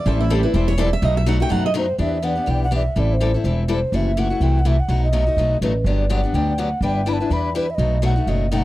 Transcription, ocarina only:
1.78 1.99 C5 medium
2.01 2.26 E5 medium
2.24 2.52 F#5 medium
2.50 2.62 G5 medium
2.64 2.72 F#5 medium
2.75 3.01 E5 medium
3.00 3.15 D5 medium
3.13 3.36 C5 medium
3.72 3.97 C5 medium
3.96 4.21 E5 medium
4.19 4.45 F#5 medium
4.43 4.61 G5 medium
4.59 4.68 F#5 medium
4.67 4.81 E5 medium
4.80 5.03 F#5 medium
5.04 5.58 D#5 medium
5.63 5.88 B4 medium
5.87 6.10 D5 medium
6.11 6.36 F#5 medium
6.35 6.60 G5 medium
6.59 6.83 F#5 medium
6.84 7.10 G5 medium
7.09 7.14 B5 medium
7.13 7.35 A5 medium
7.33 7.56 B5 medium
7.56 7.72 B4 medium
7.70 7.76 E5 medium
7.75 8.04 D#5 loud
8.05 8.30 F#5 loud
8.29 8.52 D#5 medium
8.53 8.58 G5 medium
8.57 8.64 F#5 medium

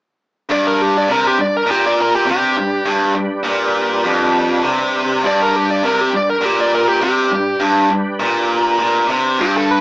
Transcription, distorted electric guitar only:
0.49 1.08 G2 loud
1.08 1.37 C3 loud
1.38 1.62 G2 medium
1.67 2.26 A#2 medium
2.26 2.55 C3 medium
2.57 2.80 G2 medium
2.86 3.13 G2 medium
3.15 3.39 G2 medium
3.45 4.03 A#2 loud
4.04 4.63 F2 loud
4.63 5.22 C3 medium
5.23 5.81 G2 medium
5.82 6.11 C3 medium
6.12 6.36 G2 medium
6.41 7.00 A#2 medium
7.01 7.30 C3 medium
7.31 7.54 G2 medium
7.60 7.89 G2 medium
7.90 8.14 G2 medium
8.20 8.78 A#2 medium
8.79 9.08 A#2 medium
9.09 9.38 C3 medium
9.39 9.81 G2 medium

